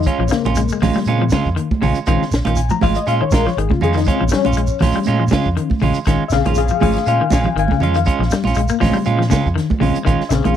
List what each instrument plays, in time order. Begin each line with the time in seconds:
0.03 clean electric guitar G#3, reed electric piano C#4, muted fingered electric bass stroke, shekere
0.07 clean electric guitar C#4 F4, kick, closed hi-hat
0.19 fingered electric bass A#1, clean electric guitar F3
0.28 reed electric piano C#3 G#3 A#3 C4, clean electric guitar A#3, snare, closed hi-hat, shekere
0.44 fingered electric bass A#1, clean electric guitar C#4 F4, closed hi-hat, high conga, shekere
0.55 clean electric guitar G#3, closed hi-hat, shekere
0.68 shekere
0.73 clean electric guitar G#3
0.80 fingered electric bass A#1, clean electric guitar F3 G#3 C#4 F4, kick, snare, open hi-hat, high conga, low conga, shekere
0.93 clean electric guitar G3, muted fingered electric bass stroke, snare, shekere
1.05 fingered electric bass A#2, reed electric piano C#3 G#3 C4, clean electric guitar G#3 C#4 F4, closed hi-hat, high conga, shekere
1.22 clean electric guitar F3
1.30 clean electric guitar C#3 G#3 C#4 F4, kick, snare, closed hi-hat, high conga, shekere
1.45 fingered electric bass F2, kick, shekere
1.56 clean electric guitar D#3, closed hi-hat
1.71 kick, high conga
1.82 fingered electric bass A#1, clean electric guitar C#3 G#3 C#4 F4, open hi-hat, low conga, shekere
1.94 muted fingered electric bass stroke, closed hi-hat, shekere
2.06 fingered electric bass A#1, reed electric piano C#3 G#3 C4, clean electric guitar D#3 G#3 C#4 F4, kick, closed hi-hat, shekere
2.21 muted fingered electric bass stroke, snare
2.31 fingered electric bass A#1, snare, closed hi-hat, shekere
2.45 fingered electric bass A#1, clean electric guitar D#3 C#4 F4, closed hi-hat, high conga, shekere
2.56 reed electric piano G#5, closed hi-hat, shekere
2.69 clean electric guitar F3, reed electric piano A#5, high conga, shekere
2.81 fingered electric bass G#1, clean electric guitar F3 G#3 F4, reed electric piano F5, muted clean electric guitar stroke, kick, open hi-hat, high conga, low conga, shekere
2.95 reed electric piano D#5, closed hi-hat, shekere
3.07 fingered electric bass A#2, clean electric guitar G#3 C#4 F4, reed electric piano F5, closed hi-hat, shekere
3.21 clean electric guitar D#3, reed electric piano C#5, muted fingered electric bass stroke
3.31 fingered electric bass A#1, clean electric guitar G#3 F4, reed electric piano A#4, kick, snare, closed hi-hat, high conga, shekere
3.45 clean electric guitar F3, reed electric piano C#5, snare, shekere
3.57 fingered electric bass G#1, clean electric guitar D#3, reed electric piano G#4, closed hi-hat
3.70 clean electric guitar C#3, reed electric piano F4, kick, high conga
3.81 fingered electric bass F2, clean electric guitar G#3 C#4 F4, reed electric piano G#4, closed hi-hat, low conga, shekere
3.94 clean electric guitar D#3, reed electric piano D#4, closed hi-hat, shekere
3.98 snare
4.04 reed electric piano C#3 G#3 C4 C#4, clean electric guitar G#3 C#4 F4, muted fingered electric bass stroke, kick, closed hi-hat, shekere
4.21 fingered electric bass A#1, clean electric guitar F3
4.29 reed electric piano F3 C#4, clean electric guitar G3, shekere
4.33 snare, closed hi-hat
4.43 fingered electric bass A#1, clean electric guitar C#4 F4, closed hi-hat, high conga, shekere
4.53 shekere
4.57 clean electric guitar G#3, closed hi-hat
4.67 shekere
4.79 fingered electric bass A#1, clean electric guitar F3 G#3 C#4 F4, kick, snare, open hi-hat, high conga, low conga, shekere
4.92 clean electric guitar G3, shekere
4.97 muted fingered electric bass stroke
5.04 fingered electric bass A#2, clean electric guitar G#3 C#4, closed hi-hat, high conga, shekere
5.08 clean electric guitar F4
5.20 clean electric guitar F3
5.28 clean electric guitar C#3, high conga, shekere
5.32 clean electric guitar G#3 C#4 F4, kick, snare, closed hi-hat
5.43 fingered electric bass F2, kick, shekere
5.57 clean electric guitar D#3, closed hi-hat
5.70 muted fingered electric bass stroke, kick, high conga
5.79 fingered electric bass A#1, clean electric guitar C#3 G#3 C#4, open hi-hat, low conga, shekere
5.83 clean electric guitar F4
5.94 muted fingered electric bass stroke, closed hi-hat, shekere
6.05 fingered electric bass A#1, clean electric guitar D#3 G#3 C#4 F4, kick, snare, closed hi-hat, shekere
6.22 muted fingered electric bass stroke
6.28 fingered electric bass A#1, reed electric piano C#3 G#3 E5, snare, closed hi-hat, shekere
6.33 clean electric guitar C#3, reed electric piano C4 G#4 F5
6.44 fingered electric bass A#1, clean electric guitar D#3 F4, closed hi-hat, high conga, shekere
6.48 clean electric guitar C#4
6.55 reed electric piano G#4 F5, closed hi-hat, shekere
6.68 clean electric guitar F3, shekere
6.80 fingered electric bass G#1, clean electric guitar F3 G#3 C#4 F4, reed electric piano G#4 F5, kick, open hi-hat, high conga, low conga, shekere
6.93 snare, closed hi-hat, shekere
7.06 fingered electric bass A#2, clean electric guitar G#3 C#4 F4, reed electric piano F5 G#5, closed hi-hat, shekere
7.19 clean electric guitar D#3, muted fingered electric bass stroke
7.30 fingered electric bass A#1, clean electric guitar G#3 C#4 F4, kick, snare, closed hi-hat, high conga, shekere
7.34 reed electric piano F5 G#5
7.44 clean electric guitar F3, low conga, shekere
7.55 fingered electric bass G#1, clean electric guitar D#3, reed electric piano F5, closed hi-hat
7.59 reed electric piano G#5
7.68 clean electric guitar C#3, kick, high conga
7.80 fingered electric bass F2, clean electric guitar G#3 C#4 F4, reed electric piano F5, closed hi-hat, low conga, shekere
7.94 clean electric guitar D#3, closed hi-hat, shekere
8.05 clean electric guitar G#3 C#4 F4, muted fingered electric bass stroke, kick, closed hi-hat, shekere
8.19 fingered electric bass A#1, clean electric guitar F3, snare
8.31 clean electric guitar G3, snare, closed hi-hat, shekere
8.43 fingered electric bass A#1, clean electric guitar C#4 F4, closed hi-hat, high conga, shekere
8.47 snare
8.54 clean electric guitar G#3, closed hi-hat, shekere
8.68 clean electric guitar A#3, shekere
8.80 fingered electric bass A#1, reed electric piano C#3 G#3 C4, clean electric guitar F3 G#3 C#4 F4, kick, snare, open hi-hat, high conga, low conga, shekere
8.93 clean electric guitar G3, muted fingered electric bass stroke, shekere
9.05 fingered electric bass A#2, clean electric guitar G#3 C#4 F4, closed hi-hat, shekere
9.19 clean electric guitar F3, snare
9.30 clean electric guitar C#3 G#3 C#4 F4, kick, snare, closed hi-hat, high conga, shekere
9.46 fingered electric bass F2, kick, shekere
9.56 clean electric guitar D#3, snare, closed hi-hat
9.70 muted fingered electric bass stroke, kick, high conga
9.80 fingered electric bass A#1, clean electric guitar C#3 G#3 C#4 F4, reed electric piano C#3 G#3 C4, open hi-hat, low conga, shekere
9.95 muted fingered electric bass stroke, closed hi-hat, shekere
10.05 fingered electric bass A#1, clean electric guitar D#3 G#3 C#4 F4, kick, closed hi-hat, shekere
10.20 muted fingered electric bass stroke, snare
10.29 fingered electric bass A#1, clean electric guitar C#3, reed electric piano C#3 G#3 C4 G#4 E5, snare, closed hi-hat, shekere
10.33 reed electric piano F5
10.44 fingered electric bass A#1, clean electric guitar D#3 C#4 F4, closed hi-hat, high conga, shekere